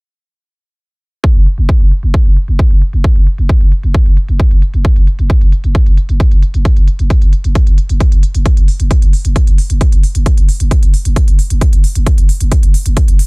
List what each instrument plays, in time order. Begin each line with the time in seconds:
1.24 kick
1.35 808-style bass F#1
1.46 closed hi-hat
1.58 808-style bass F#1, closed hi-hat
1.69 kick
1.80 808-style bass F#1, closed hi-hat
1.91 closed hi-hat
2.03 808-style bass F#1, closed hi-hat
2.14 kick
2.25 808-style bass F#1, closed hi-hat
2.37 closed hi-hat
2.48 808-style bass F#1, closed hi-hat
2.59 kick
2.71 808-style bass F#1, closed hi-hat
2.82 closed hi-hat
2.93 808-style bass F#1, closed hi-hat
3.04 kick
3.16 808-style bass F#1, closed hi-hat
3.27 closed hi-hat
3.38 808-style bass F#1, closed hi-hat
3.49 kick, closed hi-hat
3.61 808-style bass F#1, closed hi-hat
3.72 closed hi-hat
3.83 808-style bass F#1, closed hi-hat
3.94 kick, closed hi-hat
4.06 808-style bass F#1, closed hi-hat
4.17 closed hi-hat
4.28 808-style bass F#1, closed hi-hat
4.40 kick, closed hi-hat
4.51 808-style bass F#1, closed hi-hat
4.62 closed hi-hat
4.74 808-style bass F#1, closed hi-hat
4.85 kick, closed hi-hat
4.96 808-style bass F#1, closed hi-hat
5.07 closed hi-hat
5.19 808-style bass F#1, closed hi-hat
5.30 kick, closed hi-hat
5.41 808-style bass F#1, closed hi-hat
5.52 closed hi-hat
5.64 808-style bass F#1, closed hi-hat
5.75 kick, closed hi-hat
5.86 808-style bass F#1, closed hi-hat
5.97 closed hi-hat
6.09 808-style bass F#1, closed hi-hat
6.20 kick, closed hi-hat
6.31 808-style bass F#1, closed hi-hat
6.43 closed hi-hat
6.54 808-style bass F#1, closed hi-hat
6.65 kick, closed hi-hat
6.77 808-style bass F#1, closed hi-hat
6.88 closed hi-hat
6.99 808-style bass F#1, closed hi-hat
7.10 kick, closed hi-hat
7.22 808-style bass F#1, closed hi-hat
7.33 closed hi-hat
7.44 808-style bass F#1, closed hi-hat
7.55 kick, closed hi-hat
7.67 808-style bass F#1, closed hi-hat
7.78 closed hi-hat
7.89 808-style bass F#1, closed hi-hat
8.00 kick, closed hi-hat
8.12 808-style bass F#1, closed hi-hat
8.23 closed hi-hat
8.34 808-style bass F#1, closed hi-hat
8.46 kick, closed hi-hat
8.57 808-style bass F#1, closed hi-hat
8.68 open hi-hat
8.80 808-style bass F#1, closed hi-hat
8.91 kick, closed hi-hat
9.02 808-style bass F#1, closed hi-hat
9.13 open hi-hat
9.25 808-style bass F#1, closed hi-hat
9.36 kick, closed hi-hat
9.47 808-style bass F#1, closed hi-hat
9.58 open hi-hat
9.70 808-style bass F#1, closed hi-hat
9.81 kick, closed hi-hat
9.92 808-style bass F#1, closed hi-hat
10.03 open hi-hat
10.15 808-style bass F#1, closed hi-hat
10.26 kick, closed hi-hat
10.38 808-style bass F#1, closed hi-hat
10.49 open hi-hat
10.60 808-style bass F#1, closed hi-hat
10.71 kick, closed hi-hat
10.83 808-style bass F#1, closed hi-hat
10.94 open hi-hat
11.05 808-style bass F#1, closed hi-hat
11.16 kick, closed hi-hat
11.28 808-style bass F#1, closed hi-hat
11.39 open hi-hat
11.50 808-style bass F#1, closed hi-hat
11.61 kick, closed hi-hat
11.73 808-style bass F#1, closed hi-hat
11.84 open hi-hat
11.95 808-style bass F#1, closed hi-hat
12.06 kick, closed hi-hat
12.18 808-style bass F#1, closed hi-hat
12.29 open hi-hat
12.40 808-style bass F#1, closed hi-hat
12.52 kick, closed hi-hat
12.63 808-style bass F#1, closed hi-hat
12.74 open hi-hat
12.86 808-style bass F#1, closed hi-hat
12.97 kick, closed hi-hat
13.08 808-style bass F#1, closed hi-hat
13.19 open hi-hat